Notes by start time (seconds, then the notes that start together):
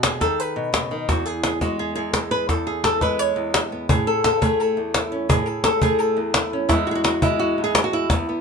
Already playing: B2
0.03 G#4, cajon slap
0.21 D#3 A4, cajon bass, cajon slap
0.40 B4
0.56 B2
0.73 C#3, cajon slap
0.91 D#3
1.09 E2 F#4, cajon bass, cajon slap
1.25 G#4
1.44 G#4, cajon slap
1.61 G#3 F#4, cajon bass, cajon slap
1.79 G#4
1.95 E2 G#4
2.13 A4, cajon slap
2.31 B4
2.49 E2 A4, cajon bass, cajon slap
2.67 G#4
2.84 A4, cajon slap
3.01 G#3 B4, cajon bass, cajon slap
3.19 C#5
3.36 E2
3.54 cajon slap
3.72 B3
3.89 A2 G#4, cajon bass
4.07 A4
4.24 A4, cajon slap
4.41 A3 G#4, cajon bass
4.60 A4
4.77 E2
4.94 E4, cajon slap
5.12 C#4
5.29 A2 G#4, cajon bass
5.46 A4, cajon slap
5.64 A4, cajon slap
5.82 A3 G#4, cajon bass
5.99 A4
6.17 E2
6.34 E4, cajon slap
6.53 C#4
6.69 E2 G#3 B3 E4, cajon bass, cajon slap
6.87 F#4
6.91 G#4
6.95 F#4
7.04 F#4, cajon slap
7.22 G#3 E4, cajon bass
7.39 F#4
7.58 E2
7.64 G#4
7.75 cajon slap
7.84 F#4
7.93 E4
8.10 E2 B3, cajon bass, cajon slap
8.29 B3